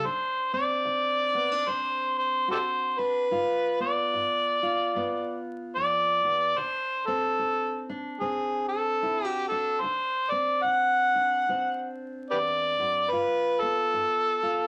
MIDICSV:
0, 0, Header, 1, 3, 480
1, 0, Start_track
1, 0, Tempo, 816327
1, 29, Time_signature, 4, 2, 24, 8
1, 8626, End_track
2, 0, Start_track
2, 0, Title_t, "Harmonica"
2, 0, Program_c, 0, 22
2, 35, Note_on_c, 0, 72, 83
2, 316, Note_off_c, 0, 72, 0
2, 319, Note_on_c, 0, 74, 99
2, 995, Note_on_c, 0, 72, 88
2, 1004, Note_off_c, 0, 74, 0
2, 1280, Note_off_c, 0, 72, 0
2, 1285, Note_on_c, 0, 72, 86
2, 1460, Note_off_c, 0, 72, 0
2, 1477, Note_on_c, 0, 67, 58
2, 1477, Note_on_c, 0, 69, 58
2, 1477, Note_on_c, 0, 72, 83
2, 1513, Note_off_c, 0, 67, 0
2, 1518, Note_off_c, 0, 69, 0
2, 1759, Note_on_c, 0, 71, 86
2, 1768, Note_off_c, 0, 72, 0
2, 2238, Note_off_c, 0, 71, 0
2, 2243, Note_on_c, 0, 74, 84
2, 3177, Note_off_c, 0, 74, 0
2, 3384, Note_on_c, 0, 74, 100
2, 3872, Note_on_c, 0, 72, 93
2, 3881, Note_off_c, 0, 74, 0
2, 4151, Note_on_c, 0, 69, 76
2, 4160, Note_off_c, 0, 72, 0
2, 4634, Note_off_c, 0, 69, 0
2, 4823, Note_on_c, 0, 68, 73
2, 5093, Note_off_c, 0, 68, 0
2, 5107, Note_on_c, 0, 69, 79
2, 5442, Note_off_c, 0, 69, 0
2, 5442, Note_on_c, 0, 67, 79
2, 5568, Note_off_c, 0, 67, 0
2, 5577, Note_on_c, 0, 69, 77
2, 5766, Note_on_c, 0, 72, 91
2, 5775, Note_off_c, 0, 69, 0
2, 6059, Note_on_c, 0, 74, 82
2, 6067, Note_off_c, 0, 72, 0
2, 6247, Note_on_c, 0, 78, 99
2, 6255, Note_off_c, 0, 74, 0
2, 7026, Note_off_c, 0, 78, 0
2, 7235, Note_on_c, 0, 67, 59
2, 7235, Note_on_c, 0, 71, 59
2, 7235, Note_on_c, 0, 74, 85
2, 7274, Note_off_c, 0, 67, 0
2, 7277, Note_off_c, 0, 71, 0
2, 7706, Note_on_c, 0, 71, 91
2, 7715, Note_off_c, 0, 74, 0
2, 7998, Note_on_c, 0, 69, 79
2, 8007, Note_off_c, 0, 71, 0
2, 8626, Note_off_c, 0, 69, 0
2, 8626, End_track
3, 0, Start_track
3, 0, Title_t, "Steel-string acoustic guitar"
3, 0, Program_c, 1, 25
3, 27, Note_on_c, 1, 38, 76
3, 37, Note_on_c, 1, 62, 57
3, 314, Note_on_c, 1, 60, 58
3, 470, Note_off_c, 1, 38, 0
3, 501, Note_on_c, 1, 38, 60
3, 788, Note_off_c, 1, 62, 0
3, 790, Note_on_c, 1, 59, 54
3, 891, Note_off_c, 1, 59, 0
3, 891, Note_on_c, 1, 62, 46
3, 947, Note_off_c, 1, 38, 0
3, 985, Note_off_c, 1, 60, 0
3, 985, Note_on_c, 1, 38, 66
3, 992, Note_on_c, 1, 60, 52
3, 1429, Note_off_c, 1, 38, 0
3, 1458, Note_on_c, 1, 38, 60
3, 1461, Note_on_c, 1, 66, 57
3, 1751, Note_off_c, 1, 62, 0
3, 1758, Note_on_c, 1, 62, 57
3, 1905, Note_off_c, 1, 38, 0
3, 1922, Note_off_c, 1, 66, 0
3, 1928, Note_off_c, 1, 60, 0
3, 1946, Note_on_c, 1, 43, 73
3, 1948, Note_off_c, 1, 62, 0
3, 1950, Note_on_c, 1, 65, 56
3, 2235, Note_on_c, 1, 59, 55
3, 2390, Note_off_c, 1, 43, 0
3, 2434, Note_on_c, 1, 43, 68
3, 2714, Note_off_c, 1, 65, 0
3, 2721, Note_on_c, 1, 65, 56
3, 2873, Note_off_c, 1, 43, 0
3, 2908, Note_off_c, 1, 59, 0
3, 2911, Note_on_c, 1, 43, 66
3, 2918, Note_on_c, 1, 59, 52
3, 3352, Note_off_c, 1, 43, 0
3, 3390, Note_on_c, 1, 41, 60
3, 3672, Note_off_c, 1, 41, 0
3, 3674, Note_on_c, 1, 40, 66
3, 3848, Note_off_c, 1, 65, 0
3, 3850, Note_off_c, 1, 59, 0
3, 3866, Note_off_c, 1, 40, 0
3, 3868, Note_on_c, 1, 38, 74
3, 3872, Note_on_c, 1, 62, 57
3, 4161, Note_on_c, 1, 60, 53
3, 4310, Note_off_c, 1, 38, 0
3, 4347, Note_on_c, 1, 38, 71
3, 4640, Note_off_c, 1, 62, 0
3, 4643, Note_on_c, 1, 62, 55
3, 4789, Note_off_c, 1, 38, 0
3, 4826, Note_off_c, 1, 60, 0
3, 4828, Note_on_c, 1, 38, 71
3, 4828, Note_on_c, 1, 60, 52
3, 5270, Note_off_c, 1, 38, 0
3, 5306, Note_on_c, 1, 38, 60
3, 5309, Note_on_c, 1, 64, 58
3, 5437, Note_off_c, 1, 64, 0
3, 5437, Note_on_c, 1, 66, 44
3, 5593, Note_off_c, 1, 62, 0
3, 5596, Note_on_c, 1, 62, 59
3, 5749, Note_off_c, 1, 38, 0
3, 5765, Note_off_c, 1, 60, 0
3, 5778, Note_on_c, 1, 38, 78
3, 5780, Note_off_c, 1, 66, 0
3, 5782, Note_off_c, 1, 62, 0
3, 5784, Note_on_c, 1, 62, 56
3, 6066, Note_on_c, 1, 60, 55
3, 6225, Note_off_c, 1, 38, 0
3, 6258, Note_on_c, 1, 38, 64
3, 6557, Note_off_c, 1, 62, 0
3, 6560, Note_on_c, 1, 62, 51
3, 6705, Note_off_c, 1, 38, 0
3, 6744, Note_off_c, 1, 60, 0
3, 6756, Note_on_c, 1, 38, 63
3, 6759, Note_on_c, 1, 60, 55
3, 7194, Note_off_c, 1, 38, 0
3, 7244, Note_on_c, 1, 40, 58
3, 7522, Note_off_c, 1, 40, 0
3, 7525, Note_on_c, 1, 42, 62
3, 7692, Note_off_c, 1, 60, 0
3, 7711, Note_off_c, 1, 42, 0
3, 7713, Note_on_c, 1, 43, 66
3, 7716, Note_off_c, 1, 62, 0
3, 7718, Note_on_c, 1, 65, 52
3, 8009, Note_on_c, 1, 59, 60
3, 8154, Note_off_c, 1, 43, 0
3, 8196, Note_on_c, 1, 43, 68
3, 8482, Note_off_c, 1, 65, 0
3, 8484, Note_on_c, 1, 65, 61
3, 8626, Note_off_c, 1, 43, 0
3, 8626, Note_off_c, 1, 59, 0
3, 8626, Note_off_c, 1, 65, 0
3, 8626, End_track
0, 0, End_of_file